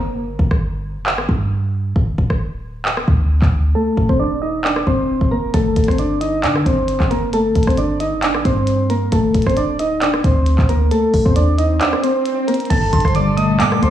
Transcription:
Already playing: A#3 A#4
0.06 F1
0.23 G1
0.39 G1, kick
0.51 G1, kick, cross-stick
0.96 F1
1.06 clap
1.12 G1
1.18 cross-stick
1.29 G2, kick
1.96 D1, kick
2.18 D1, kick
2.30 kick, cross-stick
2.85 clap
2.97 cross-stick
3.08 D2, kick
3.42 D2, kick, clap
3.75 A3 A4
3.97 D#1, kick
4.09 C4 C5, kick
4.20 D4 D5
4.42 D#4 D#5
4.64 D4 D5, clap
4.76 cross-stick
4.87 D#1 C4 C5, kick
5.21 D#1, kick
5.31 A#3 A#4
5.54 G1 A3 A4, kick, closed hi-hat
5.76 G1, kick, closed hi-hat
5.84 closed hi-hat
5.88 G1 C4 C5, kick, cross-stick, closed hi-hat
5.98 D4 D5, closed hi-hat
6.21 D#4 D#5, closed hi-hat
6.44 D3 D4 D5, clap, closed hi-hat
6.55 cross-stick
6.66 G1 C4 C5, kick, closed hi-hat
6.88 closed hi-hat
7.00 G1, kick, clap
7.10 A#3 A#4, closed hi-hat
7.23 F1
7.33 A3 A4, closed hi-hat
7.39 G1
7.55 G1, kick, closed hi-hat
7.63 closed hi-hat
7.67 G1 C4 C5, kick, cross-stick, closed hi-hat
7.77 D4 D5, closed hi-hat
8.00 D#4 D#5, closed hi-hat
8.12 F1
8.23 D4 D5, clap, closed hi-hat
8.29 G1
8.34 cross-stick
8.45 G2 C4 C5, kick, closed hi-hat
8.67 closed hi-hat
8.90 A#3 A#4, closed hi-hat
9.12 D1 A3 A4, kick, closed hi-hat
9.35 D1, kick, closed hi-hat
9.42 closed hi-hat
9.46 D1 C4 C5, kick, cross-stick, closed hi-hat
9.57 D4 D5, closed hi-hat
9.79 D#4 D#5, closed hi-hat
10.01 D4 D5, clap, closed hi-hat
10.14 cross-stick
10.24 D2 C4 C5, kick, closed hi-hat
10.46 closed hi-hat
10.58 D2, kick, clap
10.69 A#3 A#4, closed hi-hat
10.91 A3 A4, closed hi-hat, swell
11.14 D#1, kick, open hi-hat
11.25 D#2 C4 C5, kick
11.36 D4 D5, closed hi-hat
11.58 D#4 D#5, closed hi-hat
11.81 D4 D5, clap, closed hi-hat
11.93 cross-stick
12.03 C4 C5, closed hi-hat
12.26 closed hi-hat
12.48 A#3 A#4, closed hi-hat
12.54 closed hi-hat
12.60 closed hi-hat
12.65 closed hi-hat
12.70 G1 G2 A#2 G3 A4 A5, kick, closed hi-hat, crash
12.93 G1 D3 C6, kick, closed hi-hat
13.00 closed hi-hat
13.05 G1 C5 C6, kick, cross-stick, closed hi-hat
13.15 G3 D5 D6, closed hi-hat
13.37 A3 D#5 D#6, closed hi-hat
13.60 D3 A#3 D5 D6, clap, closed hi-hat
13.72 cross-stick
13.82 G1 A3 C5 C6, kick, closed hi-hat

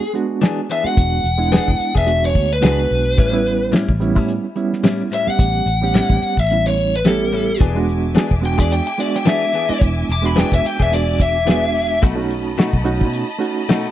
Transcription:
Already playing: G#4
0.13 G#3 B3 D4 F#4, closed hi-hat
0.42 E3 B3 D4 G#4, snare, closed hi-hat
0.70 E3 B3 D4 G#4 E5, closed hi-hat
0.84 G#3 B3 D4 F#4 F#5, muted fingered electric bass stroke
0.97 E1, kick, closed hi-hat
1.24 E1, closed hi-hat
1.38 G#3 B3 D4 E4
1.52 E3 B3 D4 G#4, snare, closed hi-hat
1.68 E1, kick
1.80 muted fingered electric bass stroke, closed hi-hat
1.95 E1 B3 D4 G#4 E5, kick
2.05 G#3 B3 D4 F#4, closed hi-hat
2.25 C#5
2.35 D2, kick, closed hi-hat
2.53 B4
2.61 C#2 E3 G#3 B3 D4 F#4 G#4 B4, snare, closed hi-hat
2.91 B1, open hi-hat
3.18 A1 A2 G3 C#4 E4, kick, closed hi-hat
3.31 G3 B3 C#4 E4
3.46 closed hi-hat
3.72 A2 G3 C#4 E4, snare, closed hi-hat
3.88 A1, kick
4.00 G3 B3 C#4 E4, closed hi-hat
4.15 A2 G3 C#4 E4, kick
4.28 closed hi-hat
4.55 G3 B3 C#4 E4, closed hi-hat
4.73 snare
4.84 A2 G3 C#4 E4, snare, closed hi-hat
5.11 A2 G3 C#4 E4 E5, closed hi-hat
5.27 G3 B3 C#4 G4 F#5, muted fingered electric bass stroke
5.39 A1, kick, closed hi-hat
5.66 A1, closed hi-hat
5.82 G3 B3 C#4 G4
5.94 A2 G3 C#4 E4, snare, closed hi-hat
6.10 A1, kick
6.22 closed hi-hat
6.37 A1 E5, kick
6.50 G3 B3 C#4 E4, closed hi-hat
6.67 C#5, snare
6.77 closed hi-hat
6.96 B4
7.05 A2 G3 B3 C#4 E4 G4 A4, snare, closed hi-hat
7.32 A2 G3 C#4 E4, closed hi-hat
7.60 E1 E3 B3 D4 G#4 E5 G#5 D6, kick, closed hi-hat
7.75 G#3 B3 D4 F#4
7.89 closed hi-hat
8.15 E3 B3 D4 G#4, snare, closed hi-hat
8.31 E1, kick
8.42 G#3 B3 D4 F#4 G5, closed hi-hat
8.58 E2 B3 D4 G#4 D5, kick
8.71 G5, closed hi-hat
8.87 G5
8.98 G#3 B3 D4 F#4 D5, closed hi-hat
9.15 G5, snare
9.25 E3 B3 D4 G#4 E5, snare, closed hi-hat
9.53 E3 B3 D4 G#4, closed hi-hat
9.69 G#3 B3 D4 E4, muted fingered electric bass stroke
9.81 E1, kick, closed hi-hat
10.09 E1 D6, closed hi-hat
10.22 G#3 B3 D4 F#4
10.26 B5
10.36 E3 B3 D4 G#4 G5, snare, closed hi-hat
10.52 E1 E5, kick
10.64 G5, muted fingered electric bass stroke, closed hi-hat
10.79 E1 B3 D4 G#4 E5, kick
10.91 G#3 B3 D4 F#4 D5, closed hi-hat
11.20 E5, kick, closed hi-hat
11.45 E3 G#3 B3 D4 F#4 G#4, closed hi-hat
11.49 snare
11.75 open hi-hat
12.02 B1 B2 A3 D#4 F#4 D#5 A5 B5, kick, closed hi-hat
12.16 A3 C#4 D#4 F#4
12.31 closed hi-hat
12.58 B2 A3 D#4 F#4, snare, closed hi-hat
12.73 B1, kick
12.84 A3 C#4 D#4 F#4, closed hi-hat
13.01 B2, kick
13.13 closed hi-hat
13.38 A3 C#4 D#4 F#4, closed hi-hat
13.69 B2 A3 D#4 F#4, snare, closed hi-hat

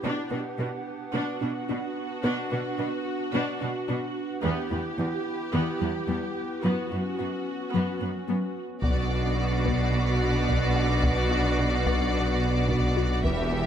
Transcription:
Already playing: G4
0.03 B2 B3 D4 B4 F#5
0.31 B2 D4 B4
0.58 B2 D4 B4
1.13 B2 B3 D4 F#4
1.41 B2 D4
1.69 B2 D4
2.23 B2 B3 D4
2.50 B2 D4 B4
2.78 B2 D4 B4
3.34 B2 B3 D4
3.61 B2 D4
3.89 B2 D4
4.43 E2 E3 B3 E4 G4 B4
4.71 E2 B3 E4
4.99 E2 B3 E4
5.54 E2 E3 B3
5.81 E2 G3 B3
6.08 E2 G3 B3
6.62 F#2 F#3 B3 C#4 F#4
6.91 F#2 B3 F#4
7.19 F#2 B3 F#4
7.74 F#2 F#3 B3
8.01 F#2 B3
8.28 F#2 B3
8.82 B1 B2 B3 D4 F#4 B4 D5, taiko
9.11 F#4
9.39 D4
9.65 B3, taiko
10.49 B3, taiko
10.76 F#4
11.03 B3, taiko
11.31 F#4
11.59 D4
11.86 B3, taiko
12.69 B3, taiko
12.97 F#4
13.23 E1 E2 E3 B3 E4 G4 B4 E5, taiko
13.53 B3

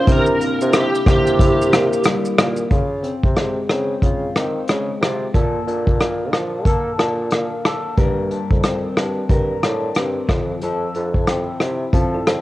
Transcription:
Already playing: C#4 C5
0.05 C3 D4 E4 G4, kick, closed hi-hat, shaker
0.10 A#4
0.26 shaker
0.40 A#3, closed hi-hat, shaker
0.61 C3, shaker
0.72 E4 G4, cross-stick, closed hi-hat, shaker
0.95 shaker
1.06 C3 A#3 G4, kick, cross-stick, closed hi-hat, shaker
1.27 shaker
1.38 E4, kick, closed hi-hat, shaker
1.61 shaker
1.72 A#3, cross-stick, closed hi-hat, shaker
1.93 shaker
2.04 G3, cross-stick, closed hi-hat, shaker
2.25 shaker
2.38 A#2 A#3, cross-stick, closed hi-hat, shaker
2.57 shaker
2.71 C#3 F4, kick, closed hi-hat
3.03 C4, closed hi-hat
3.24 C3, kick
3.36 G#3, cross-stick, closed hi-hat
3.70 C#3 C4, cross-stick, closed hi-hat
4.02 C#3 F4, kick, closed hi-hat
4.36 D#3 C4, cross-stick, closed hi-hat
4.68 C#3 G#3, cross-stick, closed hi-hat
5.01 C3 F4, cross-stick, closed hi-hat
5.34 A#2 A4, kick, closed hi-hat
5.67 A#2 D4, closed hi-hat
5.87 kick
6.00 A#3, cross-stick, closed hi-hat
6.33 F3 D4, cross-stick, closed hi-hat
6.65 A#3 A4, kick, closed hi-hat
6.98 A#2 D4, cross-stick, closed hi-hat
7.31 A#3, cross-stick, closed hi-hat
7.65 A4, cross-stick, closed hi-hat
7.97 G2 A#4, kick, closed hi-hat
8.31 D4, closed hi-hat
8.51 F2, kick
8.64 C4, cross-stick, closed hi-hat
8.97 G2 D4, cross-stick, closed hi-hat
9.29 G2 A#4, kick, closed hi-hat
9.63 A2 D4, cross-stick, closed hi-hat
9.95 G2 C4, cross-stick, closed hi-hat
10.29 F2 F3, kick, cross-stick, closed hi-hat
10.61 F2 F3 A4, closed hi-hat
10.94 F2 D4, closed hi-hat
11.14 E4, kick
11.27 C4, cross-stick, closed hi-hat
11.60 C3 E4, cross-stick, closed hi-hat
11.93 F3 C4 F4 A4, kick, closed hi-hat
12.14 E4 A4
12.27 F2 F4 C5, cross-stick, closed hi-hat

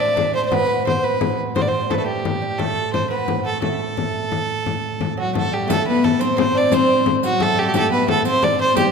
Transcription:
Already playing: A2
0.00 D4 D5
0.16 D4, frame drum
0.34 C4 C5, frame drum
0.45 C5
0.51 B3 B4, frame drum
0.67 B3, frame drum
0.85 C4 C5, frame drum
1.03 B3 B4, frame drum
1.21 frame drum
1.55 A2 C4 C5, frame drum
1.62 D5
1.67 C4 C5
1.90 A3 A4 B4, frame drum
1.98 A3 A4
2.06 G3 G4, frame drum
2.25 frame drum
2.42 G3, frame drum
2.58 A3 A4, frame drum
2.93 C4 C5, frame drum
3.10 B3 B4, frame drum
3.28 frame drum
3.45 A3 A4, frame drum
3.62 A3 A4, frame drum
3.97 frame drum
4.15 frame drum
4.32 frame drum
4.50 frame drum
4.66 frame drum
5.01 frame drum
5.17 F#3 F#4
5.33 A3 A4, frame drum
5.52 G3 G4
5.66 A2 A3 B3, frame drum
5.70 A3 A4, riq
5.87 B3 B4
6.03 A3 A4, frame drum
6.19 C4 C5, riq
6.37 C4 C5, frame drum
6.44 B3
6.51 C4 D4
6.57 D5
6.72 C4 C5, riq, frame drum
6.93 G3
7.06 frame drum
7.23 F#3 F#4, riq
7.40 A3 A4, frame drum
7.56 G3 G4
7.61 G3 A4
7.68 G4
7.73 A3 A4, riq, frame drum
7.90 B3 B4
8.06 A3 A4, frame drum
8.25 C4 C5, riq
8.42 D4 D5, frame drum
8.59 C4 C5
8.76 G3 G4, riq, frame drum

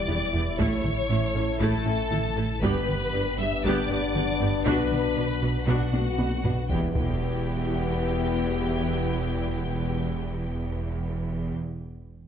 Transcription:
Already playing: E1 G3 B3 E4 G4 D5 E5 D6, sub drop
0.08 E1 E2 B3 E4 G4, taiko mid
0.33 E1 E2 B3 E4 G4
0.58 A1 A2 A3 E4 A4 C#5 C#6, taiko
0.84 A2, taiko mid
1.09 A1 A2 A3 C#4 E4
1.35 A1 A2 A3 C#4 E4
1.59 A1 A2 A3 E4 A4 A5, taiko
1.86 A1 A2 A3 C#4 E4
2.11 A1 A2 A3 E4 A4, taiko mid
2.36 A1 A2 A3 E4 A4
2.61 G1 G2 G3 B3 D4 G4 B4 B5, taiko
2.88 G2, taiko mid
3.13 G1 G2 B3 G4
3.38 G1 G2 B3 G4 E5 E6
3.64 G1 G2 G3 B3 G4 D5 D6, taiko
3.89 G1 G2 B3 G4
4.14 G1 G2 B3 G4, taiko mid
4.40 G1 G2 B3 G4
4.65 B1 B2 B3 D4 F#4 B4 B5, taiko
4.91 B2, taiko mid
5.16 B1 B2 D4 F#4
5.42 B1 B2 D4 F#4
5.67 B1 B2 B3 D4 F#4 F#5, taiko
5.92 B1 B2 D4 F#4, taiko high
6.18 B1 B2 D4 F#4 B4, taiko high
6.43 B1 B2 D4 F#4 B4, taiko low
6.69 E1 E2 B3 E4 G4 B4 G5, taiko, impact
6.94 E1 E2 B3 E4 G4 G5, taiko

